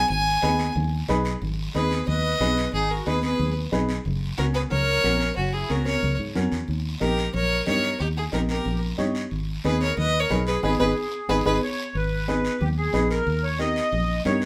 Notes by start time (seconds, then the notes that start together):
0.10 G#1 G#5, long guiro
0.42 D#2 D#4 G#4 B4, high conga, short guiro
0.59 short guiro
0.76 D#2, low conga, long guiro
1.08 B1 D#4 G#4 B4, high conga, short guiro
1.25 short guiro
1.42 G#1, low conga, long guiro
1.74 D#2 D#4 G#4 B4, high conga, short guiro
1.91 high conga, short guiro
2.07 D#2 B4 D#5, low conga, long guiro
2.40 B1 D#4 G#4 B4, high conga, low conga, short guiro
2.57 short guiro
2.73 G#1 D#4 G#4, long guiro
2.90 F#4 A#4
3.06 D#2 D#4 G#4 B4, high conga, short guiro
3.23 G#4 B4, high conga, short guiro
3.39 D#2, low conga, long guiro
3.72 B1 D#4 G#4 B4, high conga, low conga, short guiro
3.89 short guiro
4.05 F#1, low conga, long guiro
4.38 C#2 C#4 F#4 A#4, high conga, short guiro
4.54 G#4 B4, short guiro
4.70 C#2 A#4 C#5, low conga, long guiro
5.04 A#1 C#4 F#4 A#4, high conga, short guiro
5.20 short guiro
5.36 F#1 C#4 F#4, long guiro
5.53 E4 G#4
5.69 C#2 C#4 F#4 A#4, high conga, short guiro
5.86 A#4 C#5, high conga, short guiro
6.02 C#2, low conga, long guiro
6.19 G#2
6.35 F#2 C#4 F#4 A#4, high conga, low conga, short guiro
6.52 E2, short guiro
6.68 D#2, long guiro
7.00 A#1 D#4 G4 A#4, high conga, short guiro
7.18 short guiro
7.34 A#1 A#4 C#5, low conga, long guiro
7.66 G2 D#4 G4 A#4 C#5, high conga, low conga, short guiro
7.83 short guiro
7.99 D#2 D#4 G4, long guiro
8.16 E4 G#4
8.32 A#1 D#4 G4 A#4, high conga, short guiro
8.49 G4 A#4, high conga, short guiro
8.65 A#1, low conga, long guiro
8.98 G2 D#4 G4 C#5, high conga, short guiro
9.15 short guiro
9.31 G#1, long guiro
9.64 D#2 D#4 G#4 B4, high conga, short guiro
9.81 A#4 C#5, short guiro
9.97 D#2 B4 D#5, low conga, long guiro
10.20 A#4 C#5
10.30 B1 D#4 G#4 B4, high conga, low conga, short guiro
10.47 G#4 B4, short guiro
10.63 G#1 D#4 G#4 B4, high conga, long guiro
10.79 G#1 D#4 G#4 B4, high conga, long guiro
11.29 G#1 D#4 G#4 B4, high conga, long guiro
11.45 G#1 D#4 G#4 B4, high conga, long guiro
11.62 C#5
11.95 G#1 B4, long guiro
12.28 D#4 G#4 B4, high conga, short guiro
12.45 short guiro
12.61 D#2 G4, low conga, long guiro
12.78 G#4
12.93 A#1 D#4 G#4 B4, high conga, short guiro
13.10 A#4, short guiro
13.27 D#2, long guiro
13.43 C#5
13.59 D#4 G4 A#4 D#5, high conga, short guiro
13.76 short guiro
13.92 A#1, low conga, long guiro
14.25 G2 D#4 G4 A#4 C#5, high conga, short guiro
14.42 short guiro